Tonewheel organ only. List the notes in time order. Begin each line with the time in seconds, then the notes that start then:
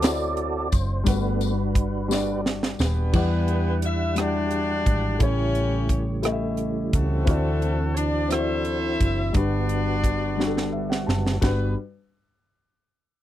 Already playing: F#4 A4 D5
0.73 C5
1.07 A3 B3 D4 F#4 B4
3.15 E3 G3 D4 F#5
5.21 C#3 E3 G3 A3
7.27 E3 C4 D4 F4
7.34 F#4
9.35 D3 G3 B3 F#4
11.42 D3 G3 B3 F#4